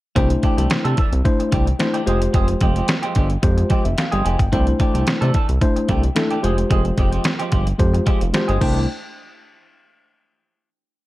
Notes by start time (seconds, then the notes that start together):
0.15 C2 E3 A3 D4 E4 G4 C5, kick, closed hi-hat
0.30 muted clean electric guitar stroke, closed hi-hat
0.43 E3 A3 D4 G4, kick, closed hi-hat
0.57 C2 E3 A3 D4 G4, closed hi-hat
0.70 C3, muted clean electric guitar stroke, snare, closed hi-hat
0.84 C3 E3 A3 D4 A4, closed hi-hat
0.97 E3 A3 D4 A4, kick, closed hi-hat
1.12 C2, muted clean electric guitar stroke, closed hi-hat
1.25 A3 D4 E4 C5, muted clean electric guitar stroke, kick, closed hi-hat
1.40 muted clean electric guitar stroke, closed hi-hat
1.52 C2 E3 A3 D4 G4, kick, closed hi-hat
1.67 muted clean electric guitar stroke, closed hi-hat
1.79 A3 D4 E4 C5, muted clean electric guitar stroke, snare, closed hi-hat
1.94 E3 A3 D4 G4, closed hi-hat
2.06 F1 F3 G#3 C4 F4 G4 G#4 C5, closed hi-hat
2.21 muted clean electric guitar stroke, closed hi-hat
2.33 F1 F3 G#3 C4 G#4, kick, closed hi-hat
2.48 muted clean electric guitar stroke, closed hi-hat
2.61 F1 F3 G#3 C4 G4, kick, closed hi-hat
2.76 F3 G#3 C4 G4, closed hi-hat
2.88 muted clean electric guitar stroke, snare, closed hi-hat
3.02 F3 G#3 C4 G4, closed hi-hat
3.15 G1 F3 G#3 C4 G4, kick, closed hi-hat
3.30 muted clean electric guitar stroke, closed hi-hat
3.42 F2 G#3 F4 G4 C5, muted clean electric guitar stroke, kick, closed hi-hat
3.57 muted clean electric guitar stroke, closed hi-hat
3.70 F3 G#3 C4 G4, kick, closed hi-hat
3.84 F1 E5, muted clean electric guitar stroke, closed hi-hat
3.97 F5, muted clean electric guitar stroke, snare, closed hi-hat
4.12 G1 F3 G#3 C4 G#4 G5, closed hi-hat
4.25 F1 F3 G#3 C4 G4 G#5, closed hi-hat
4.39 G1 G5, muted clean electric guitar stroke, kick, closed hi-hat
4.52 C2 E3 A3 D4 E4 G4 C5, kick, closed hi-hat
4.67 muted clean electric guitar stroke, closed hi-hat
4.79 E3 A3 D4 G4, kick, closed hi-hat
4.94 C2 E3 A3 D4 G4, closed hi-hat
5.07 C3, muted clean electric guitar stroke, snare, closed hi-hat
5.21 C3 E3 A3 D4 A4, closed hi-hat
5.34 E3 A3 D4 A4, kick, closed hi-hat
5.48 C2, muted clean electric guitar stroke, closed hi-hat
5.61 A3 D4 E4 C5, muted clean electric guitar stroke, kick, closed hi-hat
5.76 muted clean electric guitar stroke, closed hi-hat
5.89 C2 E3 A3 D4 G4, kick, closed hi-hat
6.03 muted clean electric guitar stroke, closed hi-hat
6.15 A3 D4 E4 A4, muted clean electric guitar stroke, snare, closed hi-hat
6.31 E3 A3 D4 G4, closed hi-hat
6.43 F1 F3 G#3 C4 F4 G4 G#4 C5, closed hi-hat
6.58 muted clean electric guitar stroke, closed hi-hat
6.70 F1 F3 G#3 C4 G#4, kick, closed hi-hat
6.85 muted clean electric guitar stroke, closed hi-hat
6.98 F1 F3 G#3 C4 G4, kick, closed hi-hat
7.12 F3 G#3 C4 G4, closed hi-hat
7.24 muted clean electric guitar stroke, snare, closed hi-hat
7.39 F3 G#3 C4 G4, closed hi-hat
7.52 G1 F3 G#3 C4 G4, kick, closed hi-hat
7.66 muted clean electric guitar stroke, closed hi-hat
7.79 F2 G#3 F4 G4 C5, muted clean electric guitar stroke, kick, closed hi-hat
7.94 muted clean electric guitar stroke, closed hi-hat
8.06 F3 G#3 C4 G4, kick, closed hi-hat
8.21 F1, muted clean electric guitar stroke, closed hi-hat
8.33 G#3 F4 G4 C5, muted clean electric guitar stroke, snare, closed hi-hat
8.48 G1 F3 G#3 C4 G#4, closed hi-hat
8.61 C2 E3 A3 D4 E4 G4 C5, kick, crash